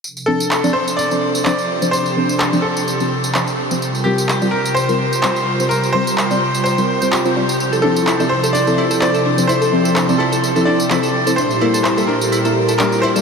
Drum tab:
TB |xx-xxx-xxx-xxx-x|xx-xxx-xxx-xxx-x|xx-xxx-xxx-xxx-x|xx-xxx-xxx-xxx-x|
CP |----x-------x---|----x-------x---|----x-------x---|----x-------x---|

TB |xx-xxx-xxx-xxx-x|xx-xxx-xxx-xxx-x|xx-xxx-xxx-xxx-x|
CP |----x-------x---|----x-------x---|----x-------x---|